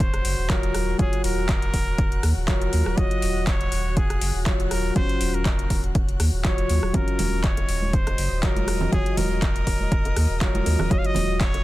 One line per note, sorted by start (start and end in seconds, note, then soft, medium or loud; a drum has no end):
0.00 0.20 D#1 loud
0.00 0.46 F#3 medium
0.00 0.48 C#4 loud
0.00 0.47 F4 medium
0.00 6.95 F#4 medium
0.00 0.51 C5 loud
0.00 6.95 F#6 medium
0.00 kick loud
0.00 closed hi-hat medium
0.14 cross-stick medium
0.14 closed hi-hat medium
0.25 0.35 F#1 loud
0.25 open hi-hat loud
0.38 0.95 D#1 medium
0.49 0.96 F#3 medium
0.49 0.97 F4 medium
0.49 0.99 A#4 medium
0.49 0.97 C#5 medium
0.49 kick loud
0.49 clap loud
0.49 closed hi-hat medium
0.63 closed hi-hat medium
0.75 cross-stick medium
0.75 open hi-hat medium
0.98 1.09 D#1 loud
0.98 2.45 F#3 medium
0.98 2.45 F4 medium
0.98 1.22 G#4 loud
0.98 2.46 C#5 loud
0.98 kick loud
0.98 closed hi-hat medium
1.13 closed hi-hat medium
1.24 1.69 D#1 medium
1.24 2.31 A#4 loud
1.24 open hi-hat loud
1.49 kick loud
1.49 clap loud
1.49 closed hi-hat medium
1.62 closed hi-hat medium
1.74 2.19 D#1 loud
1.74 kick medium
1.74 open hi-hat medium
1.98 kick loud
1.98 closed hi-hat medium
2.12 closed hi-hat soft
2.23 2.33 D#2 loud
2.23 cross-stick medium
2.23 open hi-hat loud
2.37 2.72 D#1 medium
2.48 2.95 F#3 medium
2.48 2.95 F4 medium
2.48 2.99 A#4 loud
2.48 2.95 C#5 medium
2.48 kick loud
2.48 clap loud
2.48 closed hi-hat medium
2.62 closed hi-hat medium
2.73 2.83 D#2 loud
2.73 open hi-hat loud
2.86 2.95 D#1 loud
2.86 cross-stick medium
2.97 3.08 D#1 loud
2.97 4.43 F#3 medium
2.97 4.44 F4 medium
2.97 4.44 C#5 loud
2.97 3.46 D#5 loud
2.97 kick loud
2.97 closed hi-hat medium
3.11 closed hi-hat medium
3.22 3.67 D#1 medium
3.22 open hi-hat loud
3.47 3.98 C#5 loud
3.47 kick loud
3.47 clap loud
3.47 closed hi-hat medium
3.61 closed hi-hat medium
3.72 4.17 D#1 loud
3.72 open hi-hat loud
3.97 4.44 G#4 loud
3.97 kick loud
3.97 closed hi-hat medium
4.10 cross-stick medium
4.10 closed hi-hat medium
4.21 4.31 F#1 loud
4.21 open hi-hat loud
4.35 4.91 D#1 medium
4.46 4.93 F#3 medium
4.46 4.93 F4 medium
4.46 4.93 C#5 loud
4.46 kick loud
4.46 clap loud
4.46 closed hi-hat medium
4.60 closed hi-hat soft
4.71 4.94 A#4 loud
4.71 cross-stick medium
4.71 open hi-hat loud
4.95 5.06 D#1 loud
4.95 6.41 F#3 medium
4.95 6.43 C#4 loud
4.95 6.42 F4 medium
4.95 5.36 C5 loud
4.95 kick loud
4.95 closed hi-hat medium
5.09 closed hi-hat medium
5.21 5.66 D#1 medium
5.21 open hi-hat loud
5.34 5.84 A#4 loud
5.45 kick loud
5.45 clap loud
5.45 closed hi-hat medium
5.59 closed hi-hat medium
5.70 6.15 D#1 loud
5.70 kick medium
5.70 open hi-hat loud
5.84 closed hi-hat soft
5.95 kick loud
5.95 closed hi-hat medium
6.09 closed hi-hat soft
6.20 6.30 D#2 loud
6.20 cross-stick medium
6.20 open hi-hat loud
6.33 6.69 D#1 loud
6.44 6.91 F#3 medium
6.44 6.92 F4 medium
6.44 6.96 C#5 medium
6.44 6.92 C#5 loud
6.44 kick loud
6.44 clap loud
6.44 closed hi-hat medium
6.58 closed hi-hat soft
6.69 6.79 D#2 loud
6.69 open hi-hat loud
6.83 6.91 D#1 loud
6.83 cross-stick medium
6.93 7.04 D#1 loud
6.93 8.40 F#3 medium
6.93 8.41 C#4 loud
6.93 8.40 F4 medium
6.93 7.45 A#4 loud
6.93 11.64 D#5 medium
6.93 11.64 D#6 medium
6.93 kick loud
6.93 closed hi-hat medium
6.93 low conga medium
7.08 closed hi-hat medium
7.19 7.64 D#1 medium
7.19 open hi-hat loud
7.19 high conga medium
7.19 low conga medium
7.44 7.95 C#5 loud
7.44 kick loud
7.44 clap loud
7.44 closed hi-hat medium
7.57 closed hi-hat medium
7.57 high bongo medium
7.69 8.13 D#1 loud
7.69 open hi-hat medium
7.82 high conga medium
7.93 8.42 C5 loud
7.93 kick loud
7.93 closed hi-hat medium
8.07 cross-stick medium
8.07 closed hi-hat soft
8.07 high bongo medium
8.18 8.28 F#1 loud
8.18 open hi-hat loud
8.32 8.88 D#1 medium
8.42 8.90 F#3 medium
8.42 8.90 F4 medium
8.42 8.89 A#4 medium
8.42 8.90 C#5 medium
8.42 kick loud
8.42 clap loud
8.42 closed hi-hat medium
8.56 closed hi-hat soft
8.56 high conga loud
8.68 cross-stick medium
8.68 open hi-hat loud
8.68 high bongo medium
8.81 low conga medium
8.91 9.03 D#1 loud
8.91 10.38 F#3 medium
8.91 10.39 F4 medium
8.91 9.19 G#4 loud
8.91 10.39 C#5 loud
8.91 kick loud
8.91 closed hi-hat medium
8.91 low conga medium
9.06 closed hi-hat medium
9.17 9.62 D#1 medium
9.17 10.41 A#4 loud
9.17 open hi-hat loud
9.17 high conga medium
9.17 low conga medium
9.42 kick loud
9.42 clap loud
9.42 closed hi-hat medium
9.56 closed hi-hat medium
9.67 10.12 D#1 loud
9.67 kick medium
9.67 open hi-hat medium
9.80 high conga medium
9.92 kick loud
9.92 closed hi-hat medium
10.05 closed hi-hat soft
10.05 high bongo medium
10.17 10.27 D#2 loud
10.17 cross-stick medium
10.17 open hi-hat loud
10.30 10.66 D#1 medium
10.41 10.88 F#3 medium
10.41 10.88 F4 medium
10.41 10.92 A#4 loud
10.41 10.89 C#5 medium
10.41 kick loud
10.41 clap loud
10.41 closed hi-hat medium
10.41 high bongo medium
10.55 closed hi-hat medium
10.55 high conga medium
10.66 10.76 D#2 loud
10.66 open hi-hat medium
10.66 high bongo medium
10.79 10.88 D#1 medium
10.79 cross-stick medium
10.79 low conga medium
10.90 11.01 D#1 loud
10.90 11.64 F#3 medium
10.90 11.64 F4 medium
10.90 11.64 C#5 loud
10.90 11.00 D#5 loud
10.90 kick loud
10.90 closed hi-hat medium
10.90 low conga medium
10.98 11.07 F5 loud
11.04 11.40 D#5 loud
11.04 closed hi-hat medium
11.15 11.61 D#1 medium
11.15 open hi-hat loud
11.15 high conga medium
11.15 low conga medium
11.41 11.64 C#5 loud
11.41 kick loud
11.41 clap loud
11.41 closed hi-hat medium
11.54 closed hi-hat medium
11.54 high bongo medium